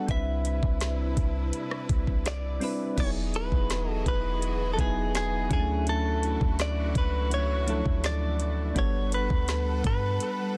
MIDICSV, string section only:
0, 0, Header, 1, 2, 480
1, 0, Start_track
1, 0, Tempo, 722892
1, 57, Time_signature, 4, 2, 24, 8
1, 7018, End_track
2, 0, Start_track
2, 0, Title_t, "String section"
2, 0, Program_c, 0, 48
2, 55, Note_on_c, 0, 64, 88
2, 55, Note_on_c, 0, 71, 71
2, 56, Note_on_c, 0, 48, 76
2, 56, Note_on_c, 0, 62, 67
2, 1957, Note_off_c, 0, 48, 0
2, 1957, Note_off_c, 0, 62, 0
2, 1957, Note_off_c, 0, 64, 0
2, 1957, Note_off_c, 0, 71, 0
2, 1977, Note_on_c, 0, 52, 80
2, 1977, Note_on_c, 0, 68, 86
2, 1978, Note_on_c, 0, 66, 69
2, 1978, Note_on_c, 0, 75, 70
2, 3640, Note_off_c, 0, 52, 0
2, 3640, Note_off_c, 0, 68, 0
2, 3641, Note_off_c, 0, 66, 0
2, 3641, Note_off_c, 0, 75, 0
2, 3655, Note_on_c, 0, 66, 91
2, 3656, Note_on_c, 0, 52, 81
2, 3656, Note_on_c, 0, 57, 74
2, 3656, Note_on_c, 0, 64, 77
2, 5795, Note_off_c, 0, 52, 0
2, 5795, Note_off_c, 0, 57, 0
2, 5795, Note_off_c, 0, 64, 0
2, 5795, Note_off_c, 0, 66, 0
2, 5815, Note_on_c, 0, 55, 83
2, 5816, Note_on_c, 0, 69, 76
2, 5816, Note_on_c, 0, 71, 85
2, 5816, Note_on_c, 0, 78, 76
2, 7018, Note_off_c, 0, 55, 0
2, 7018, Note_off_c, 0, 69, 0
2, 7018, Note_off_c, 0, 71, 0
2, 7018, Note_off_c, 0, 78, 0
2, 7018, End_track
0, 0, End_of_file